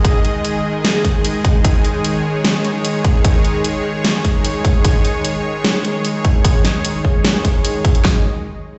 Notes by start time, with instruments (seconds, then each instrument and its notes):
Already playing: supersaw synth D#3 G#3 G#4 D#5
0.05 kick, closed hi-hat
0.25 closed hi-hat
0.45 closed hi-hat
0.85 snare, closed hi-hat
1.05 kick, closed hi-hat
1.25 closed hi-hat
1.45 kick, closed hi-hat
1.64 supersaw synth C#5, kick, closed hi-hat
1.84 closed hi-hat
2.05 closed hi-hat
2.45 snare, closed hi-hat
2.65 closed hi-hat
2.85 closed hi-hat
3.05 kick, closed hi-hat
3.25 kick, closed hi-hat
3.45 closed hi-hat
3.64 closed hi-hat
4.05 snare, closed hi-hat
4.25 kick, closed hi-hat
4.45 closed hi-hat
4.65 kick, closed hi-hat
4.85 kick, closed hi-hat
5.05 closed hi-hat
5.25 closed hi-hat
5.65 snare, closed hi-hat
5.85 closed hi-hat
6.05 closed hi-hat
6.25 kick, closed hi-hat
6.45 kick, closed hi-hat
6.65 snare, closed hi-hat
6.85 closed hi-hat
7.05 kick
7.25 snare, closed hi-hat
7.45 kick, closed hi-hat
7.65 closed hi-hat
7.85 kick, closed hi-hat
7.95 closed hi-hat
8.05 supersaw synth D#3 G#3 G#4 D#5, kick, snare, clap